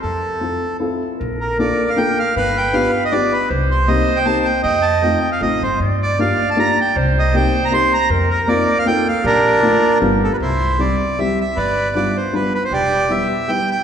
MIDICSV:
0, 0, Header, 1, 5, 480
1, 0, Start_track
1, 0, Key_signature, -2, "major"
1, 0, Tempo, 384615
1, 41, Time_signature, 3, 2, 24, 8
1, 12985, Key_signature, 0, "major"
1, 17266, End_track
2, 0, Start_track
2, 0, Title_t, "Accordion"
2, 0, Program_c, 0, 21
2, 24, Note_on_c, 0, 69, 69
2, 961, Note_off_c, 0, 69, 0
2, 1755, Note_on_c, 0, 70, 67
2, 1968, Note_off_c, 0, 70, 0
2, 1987, Note_on_c, 0, 74, 69
2, 2365, Note_on_c, 0, 77, 76
2, 2366, Note_off_c, 0, 74, 0
2, 2464, Note_on_c, 0, 79, 79
2, 2475, Note_off_c, 0, 77, 0
2, 2729, Note_off_c, 0, 79, 0
2, 2733, Note_on_c, 0, 77, 81
2, 2935, Note_off_c, 0, 77, 0
2, 2954, Note_on_c, 0, 77, 94
2, 2964, Note_on_c, 0, 71, 65
2, 3209, Note_on_c, 0, 79, 77
2, 3211, Note_off_c, 0, 77, 0
2, 3411, Note_on_c, 0, 77, 78
2, 3432, Note_off_c, 0, 79, 0
2, 3634, Note_off_c, 0, 71, 0
2, 3791, Note_off_c, 0, 77, 0
2, 3807, Note_on_c, 0, 75, 81
2, 3893, Note_on_c, 0, 74, 86
2, 3910, Note_off_c, 0, 75, 0
2, 4151, Note_on_c, 0, 71, 81
2, 4156, Note_off_c, 0, 74, 0
2, 4356, Note_off_c, 0, 71, 0
2, 4630, Note_on_c, 0, 72, 77
2, 4841, Note_on_c, 0, 75, 80
2, 4856, Note_off_c, 0, 72, 0
2, 5196, Note_on_c, 0, 79, 74
2, 5221, Note_off_c, 0, 75, 0
2, 5311, Note_on_c, 0, 81, 87
2, 5319, Note_off_c, 0, 79, 0
2, 5555, Note_on_c, 0, 79, 79
2, 5580, Note_off_c, 0, 81, 0
2, 5762, Note_off_c, 0, 79, 0
2, 5777, Note_on_c, 0, 75, 69
2, 5781, Note_on_c, 0, 79, 88
2, 6017, Note_on_c, 0, 81, 80
2, 6054, Note_off_c, 0, 79, 0
2, 6263, Note_on_c, 0, 79, 70
2, 6266, Note_off_c, 0, 81, 0
2, 6472, Note_off_c, 0, 75, 0
2, 6612, Note_off_c, 0, 79, 0
2, 6637, Note_on_c, 0, 77, 71
2, 6758, Note_off_c, 0, 77, 0
2, 6761, Note_on_c, 0, 75, 83
2, 7024, Note_off_c, 0, 75, 0
2, 7028, Note_on_c, 0, 72, 72
2, 7231, Note_off_c, 0, 72, 0
2, 7518, Note_on_c, 0, 74, 84
2, 7738, Note_off_c, 0, 74, 0
2, 7739, Note_on_c, 0, 77, 76
2, 8109, Note_off_c, 0, 77, 0
2, 8116, Note_on_c, 0, 81, 80
2, 8217, Note_off_c, 0, 81, 0
2, 8228, Note_on_c, 0, 82, 89
2, 8476, Note_off_c, 0, 82, 0
2, 8501, Note_on_c, 0, 79, 83
2, 8686, Note_off_c, 0, 79, 0
2, 8975, Note_on_c, 0, 75, 87
2, 9182, Note_off_c, 0, 75, 0
2, 9186, Note_on_c, 0, 79, 91
2, 9545, Note_off_c, 0, 79, 0
2, 9547, Note_on_c, 0, 82, 86
2, 9646, Note_off_c, 0, 82, 0
2, 9654, Note_on_c, 0, 84, 101
2, 9902, Note_off_c, 0, 84, 0
2, 9904, Note_on_c, 0, 82, 103
2, 10100, Note_off_c, 0, 82, 0
2, 10364, Note_on_c, 0, 70, 81
2, 10587, Note_on_c, 0, 74, 85
2, 10590, Note_off_c, 0, 70, 0
2, 10961, Note_off_c, 0, 74, 0
2, 10964, Note_on_c, 0, 77, 95
2, 11070, Note_off_c, 0, 77, 0
2, 11070, Note_on_c, 0, 79, 88
2, 11327, Note_off_c, 0, 79, 0
2, 11334, Note_on_c, 0, 77, 87
2, 11551, Note_on_c, 0, 62, 74
2, 11553, Note_off_c, 0, 77, 0
2, 11560, Note_on_c, 0, 70, 95
2, 12457, Note_off_c, 0, 62, 0
2, 12461, Note_off_c, 0, 70, 0
2, 12780, Note_on_c, 0, 69, 72
2, 12886, Note_off_c, 0, 69, 0
2, 12890, Note_on_c, 0, 71, 62
2, 12937, Note_off_c, 0, 71, 0
2, 13000, Note_on_c, 0, 64, 61
2, 13002, Note_on_c, 0, 72, 75
2, 13481, Note_on_c, 0, 74, 68
2, 13491, Note_off_c, 0, 72, 0
2, 13683, Note_off_c, 0, 64, 0
2, 13965, Note_on_c, 0, 76, 75
2, 13971, Note_off_c, 0, 74, 0
2, 14218, Note_off_c, 0, 76, 0
2, 14236, Note_on_c, 0, 76, 70
2, 14432, Note_on_c, 0, 71, 63
2, 14440, Note_on_c, 0, 74, 79
2, 14453, Note_off_c, 0, 76, 0
2, 14908, Note_off_c, 0, 74, 0
2, 14927, Note_on_c, 0, 74, 71
2, 15121, Note_off_c, 0, 71, 0
2, 15182, Note_on_c, 0, 72, 69
2, 15185, Note_off_c, 0, 74, 0
2, 15407, Note_on_c, 0, 71, 74
2, 15408, Note_off_c, 0, 72, 0
2, 15639, Note_off_c, 0, 71, 0
2, 15658, Note_on_c, 0, 71, 79
2, 15770, Note_off_c, 0, 71, 0
2, 15779, Note_on_c, 0, 72, 68
2, 15885, Note_on_c, 0, 67, 64
2, 15886, Note_off_c, 0, 72, 0
2, 15888, Note_on_c, 0, 74, 94
2, 16363, Note_on_c, 0, 76, 70
2, 16377, Note_off_c, 0, 74, 0
2, 16569, Note_off_c, 0, 67, 0
2, 16831, Note_on_c, 0, 79, 88
2, 16856, Note_off_c, 0, 76, 0
2, 17095, Note_off_c, 0, 79, 0
2, 17114, Note_on_c, 0, 79, 86
2, 17266, Note_off_c, 0, 79, 0
2, 17266, End_track
3, 0, Start_track
3, 0, Title_t, "Clarinet"
3, 0, Program_c, 1, 71
3, 1485, Note_on_c, 1, 70, 77
3, 2884, Note_off_c, 1, 70, 0
3, 2940, Note_on_c, 1, 71, 91
3, 4367, Note_on_c, 1, 72, 102
3, 4385, Note_off_c, 1, 71, 0
3, 5784, Note_off_c, 1, 72, 0
3, 5791, Note_on_c, 1, 75, 92
3, 6617, Note_off_c, 1, 75, 0
3, 7255, Note_on_c, 1, 74, 106
3, 8696, Note_on_c, 1, 72, 103
3, 8715, Note_off_c, 1, 74, 0
3, 10122, Note_on_c, 1, 70, 98
3, 10141, Note_off_c, 1, 72, 0
3, 11060, Note_off_c, 1, 70, 0
3, 11068, Note_on_c, 1, 69, 77
3, 11534, Note_on_c, 1, 67, 86
3, 11553, Note_off_c, 1, 69, 0
3, 11995, Note_on_c, 1, 65, 78
3, 12014, Note_off_c, 1, 67, 0
3, 12501, Note_on_c, 1, 67, 63
3, 12519, Note_off_c, 1, 65, 0
3, 12986, Note_off_c, 1, 67, 0
3, 17266, End_track
4, 0, Start_track
4, 0, Title_t, "Upright piano"
4, 0, Program_c, 2, 0
4, 504, Note_on_c, 2, 60, 50
4, 514, Note_on_c, 2, 64, 39
4, 515, Note_on_c, 2, 65, 43
4, 527, Note_on_c, 2, 69, 51
4, 778, Note_off_c, 2, 60, 0
4, 783, Note_off_c, 2, 64, 0
4, 783, Note_off_c, 2, 65, 0
4, 789, Note_off_c, 2, 69, 0
4, 993, Note_on_c, 2, 60, 63
4, 996, Note_on_c, 2, 64, 58
4, 1005, Note_on_c, 2, 65, 54
4, 1012, Note_on_c, 2, 69, 67
4, 1267, Note_off_c, 2, 60, 0
4, 1269, Note_off_c, 2, 64, 0
4, 1273, Note_off_c, 2, 65, 0
4, 1277, Note_off_c, 2, 69, 0
4, 1975, Note_on_c, 2, 58, 57
4, 1985, Note_on_c, 2, 65, 55
4, 1988, Note_on_c, 2, 62, 53
4, 1990, Note_on_c, 2, 69, 62
4, 2238, Note_off_c, 2, 58, 0
4, 2243, Note_off_c, 2, 65, 0
4, 2244, Note_off_c, 2, 62, 0
4, 2245, Note_off_c, 2, 69, 0
4, 2451, Note_on_c, 2, 62, 51
4, 2458, Note_on_c, 2, 58, 62
4, 2462, Note_on_c, 2, 65, 47
4, 2472, Note_on_c, 2, 69, 64
4, 2715, Note_off_c, 2, 62, 0
4, 2718, Note_off_c, 2, 58, 0
4, 2720, Note_off_c, 2, 65, 0
4, 2725, Note_off_c, 2, 69, 0
4, 3407, Note_on_c, 2, 59, 61
4, 3410, Note_on_c, 2, 62, 57
4, 3419, Note_on_c, 2, 67, 65
4, 3423, Note_on_c, 2, 65, 62
4, 3667, Note_off_c, 2, 59, 0
4, 3669, Note_off_c, 2, 62, 0
4, 3674, Note_off_c, 2, 67, 0
4, 3675, Note_off_c, 2, 65, 0
4, 3896, Note_on_c, 2, 59, 55
4, 3896, Note_on_c, 2, 62, 51
4, 3902, Note_on_c, 2, 65, 54
4, 3910, Note_on_c, 2, 67, 72
4, 4149, Note_off_c, 2, 59, 0
4, 4149, Note_off_c, 2, 62, 0
4, 4152, Note_off_c, 2, 65, 0
4, 4157, Note_off_c, 2, 67, 0
4, 4831, Note_on_c, 2, 58, 53
4, 4842, Note_on_c, 2, 60, 58
4, 4843, Note_on_c, 2, 63, 58
4, 4850, Note_on_c, 2, 67, 70
4, 5094, Note_off_c, 2, 58, 0
4, 5099, Note_off_c, 2, 60, 0
4, 5099, Note_off_c, 2, 63, 0
4, 5103, Note_off_c, 2, 67, 0
4, 5306, Note_on_c, 2, 58, 53
4, 5313, Note_on_c, 2, 60, 49
4, 5315, Note_on_c, 2, 63, 54
4, 5323, Note_on_c, 2, 67, 67
4, 5570, Note_off_c, 2, 58, 0
4, 5573, Note_off_c, 2, 60, 0
4, 5574, Note_off_c, 2, 63, 0
4, 5578, Note_off_c, 2, 67, 0
4, 6262, Note_on_c, 2, 57, 57
4, 6267, Note_on_c, 2, 60, 55
4, 6272, Note_on_c, 2, 63, 49
4, 6276, Note_on_c, 2, 65, 61
4, 6526, Note_off_c, 2, 57, 0
4, 6529, Note_off_c, 2, 60, 0
4, 6531, Note_off_c, 2, 63, 0
4, 6533, Note_off_c, 2, 65, 0
4, 6747, Note_on_c, 2, 57, 54
4, 6759, Note_on_c, 2, 60, 53
4, 6759, Note_on_c, 2, 63, 50
4, 6763, Note_on_c, 2, 65, 59
4, 7010, Note_off_c, 2, 57, 0
4, 7016, Note_off_c, 2, 60, 0
4, 7016, Note_off_c, 2, 63, 0
4, 7018, Note_off_c, 2, 65, 0
4, 7725, Note_on_c, 2, 58, 51
4, 7727, Note_on_c, 2, 62, 52
4, 7736, Note_on_c, 2, 65, 55
4, 7740, Note_on_c, 2, 67, 59
4, 7979, Note_off_c, 2, 58, 0
4, 7980, Note_off_c, 2, 62, 0
4, 7985, Note_off_c, 2, 65, 0
4, 7987, Note_off_c, 2, 67, 0
4, 8192, Note_on_c, 2, 58, 60
4, 8198, Note_on_c, 2, 62, 58
4, 8205, Note_on_c, 2, 67, 62
4, 8209, Note_on_c, 2, 65, 49
4, 8451, Note_off_c, 2, 58, 0
4, 8454, Note_off_c, 2, 62, 0
4, 8457, Note_off_c, 2, 67, 0
4, 8459, Note_off_c, 2, 65, 0
4, 9160, Note_on_c, 2, 58, 61
4, 9165, Note_on_c, 2, 60, 56
4, 9166, Note_on_c, 2, 63, 55
4, 9172, Note_on_c, 2, 67, 70
4, 9411, Note_off_c, 2, 58, 0
4, 9413, Note_off_c, 2, 60, 0
4, 9414, Note_off_c, 2, 63, 0
4, 9417, Note_off_c, 2, 67, 0
4, 9616, Note_on_c, 2, 58, 51
4, 9618, Note_on_c, 2, 60, 47
4, 9630, Note_on_c, 2, 63, 50
4, 9639, Note_on_c, 2, 67, 67
4, 9876, Note_off_c, 2, 58, 0
4, 9877, Note_off_c, 2, 60, 0
4, 9883, Note_off_c, 2, 63, 0
4, 9888, Note_off_c, 2, 67, 0
4, 10572, Note_on_c, 2, 58, 61
4, 10578, Note_on_c, 2, 60, 58
4, 10581, Note_on_c, 2, 63, 54
4, 10584, Note_on_c, 2, 65, 69
4, 10831, Note_off_c, 2, 58, 0
4, 10835, Note_off_c, 2, 60, 0
4, 10836, Note_off_c, 2, 63, 0
4, 10837, Note_off_c, 2, 65, 0
4, 11046, Note_on_c, 2, 58, 66
4, 11051, Note_on_c, 2, 60, 49
4, 11058, Note_on_c, 2, 63, 53
4, 11068, Note_on_c, 2, 65, 69
4, 11307, Note_off_c, 2, 58, 0
4, 11310, Note_off_c, 2, 60, 0
4, 11313, Note_off_c, 2, 63, 0
4, 11318, Note_off_c, 2, 65, 0
4, 12006, Note_on_c, 2, 57, 61
4, 12013, Note_on_c, 2, 58, 58
4, 12015, Note_on_c, 2, 62, 60
4, 12020, Note_on_c, 2, 65, 66
4, 12268, Note_off_c, 2, 57, 0
4, 12272, Note_off_c, 2, 58, 0
4, 12272, Note_off_c, 2, 62, 0
4, 12275, Note_off_c, 2, 65, 0
4, 12485, Note_on_c, 2, 55, 72
4, 12492, Note_on_c, 2, 59, 61
4, 12499, Note_on_c, 2, 62, 58
4, 12505, Note_on_c, 2, 65, 70
4, 12752, Note_off_c, 2, 55, 0
4, 12756, Note_off_c, 2, 59, 0
4, 12759, Note_off_c, 2, 62, 0
4, 12762, Note_off_c, 2, 65, 0
4, 13458, Note_on_c, 2, 55, 56
4, 13461, Note_on_c, 2, 60, 50
4, 13468, Note_on_c, 2, 64, 53
4, 13477, Note_on_c, 2, 67, 58
4, 13720, Note_off_c, 2, 55, 0
4, 13722, Note_off_c, 2, 60, 0
4, 13726, Note_off_c, 2, 64, 0
4, 13730, Note_off_c, 2, 67, 0
4, 13962, Note_on_c, 2, 55, 58
4, 13962, Note_on_c, 2, 64, 55
4, 13963, Note_on_c, 2, 60, 50
4, 13976, Note_on_c, 2, 67, 61
4, 14213, Note_off_c, 2, 55, 0
4, 14213, Note_off_c, 2, 64, 0
4, 14214, Note_off_c, 2, 60, 0
4, 14220, Note_off_c, 2, 67, 0
4, 14910, Note_on_c, 2, 55, 57
4, 14913, Note_on_c, 2, 59, 47
4, 14918, Note_on_c, 2, 62, 57
4, 14922, Note_on_c, 2, 65, 60
4, 15169, Note_off_c, 2, 55, 0
4, 15171, Note_off_c, 2, 59, 0
4, 15173, Note_off_c, 2, 62, 0
4, 15175, Note_off_c, 2, 65, 0
4, 15385, Note_on_c, 2, 55, 50
4, 15387, Note_on_c, 2, 59, 51
4, 15392, Note_on_c, 2, 62, 57
4, 15403, Note_on_c, 2, 65, 54
4, 15647, Note_off_c, 2, 55, 0
4, 15648, Note_off_c, 2, 59, 0
4, 15650, Note_off_c, 2, 62, 0
4, 15656, Note_off_c, 2, 65, 0
4, 16336, Note_on_c, 2, 55, 51
4, 16338, Note_on_c, 2, 64, 52
4, 16342, Note_on_c, 2, 59, 51
4, 16345, Note_on_c, 2, 67, 67
4, 16604, Note_off_c, 2, 55, 0
4, 16605, Note_off_c, 2, 64, 0
4, 16607, Note_off_c, 2, 59, 0
4, 16608, Note_off_c, 2, 67, 0
4, 16822, Note_on_c, 2, 55, 53
4, 16832, Note_on_c, 2, 59, 46
4, 16838, Note_on_c, 2, 64, 54
4, 16841, Note_on_c, 2, 67, 62
4, 17088, Note_off_c, 2, 55, 0
4, 17093, Note_off_c, 2, 59, 0
4, 17096, Note_off_c, 2, 64, 0
4, 17097, Note_off_c, 2, 67, 0
4, 17266, End_track
5, 0, Start_track
5, 0, Title_t, "Upright bass"
5, 0, Program_c, 3, 32
5, 45, Note_on_c, 3, 41, 74
5, 680, Note_off_c, 3, 41, 0
5, 1506, Note_on_c, 3, 34, 83
5, 2131, Note_off_c, 3, 34, 0
5, 2947, Note_on_c, 3, 31, 88
5, 3564, Note_off_c, 3, 31, 0
5, 4374, Note_on_c, 3, 36, 92
5, 4993, Note_off_c, 3, 36, 0
5, 5790, Note_on_c, 3, 41, 89
5, 6416, Note_off_c, 3, 41, 0
5, 6754, Note_on_c, 3, 33, 76
5, 6987, Note_off_c, 3, 33, 0
5, 7010, Note_on_c, 3, 31, 80
5, 7214, Note_off_c, 3, 31, 0
5, 7236, Note_on_c, 3, 43, 84
5, 7862, Note_off_c, 3, 43, 0
5, 8682, Note_on_c, 3, 36, 93
5, 9299, Note_off_c, 3, 36, 0
5, 10105, Note_on_c, 3, 41, 86
5, 10725, Note_off_c, 3, 41, 0
5, 11536, Note_on_c, 3, 34, 95
5, 12162, Note_off_c, 3, 34, 0
5, 12502, Note_on_c, 3, 31, 92
5, 12817, Note_off_c, 3, 31, 0
5, 12985, Note_on_c, 3, 36, 80
5, 13612, Note_off_c, 3, 36, 0
5, 14440, Note_on_c, 3, 31, 86
5, 15064, Note_off_c, 3, 31, 0
5, 15867, Note_on_c, 3, 28, 75
5, 16496, Note_off_c, 3, 28, 0
5, 17266, End_track
0, 0, End_of_file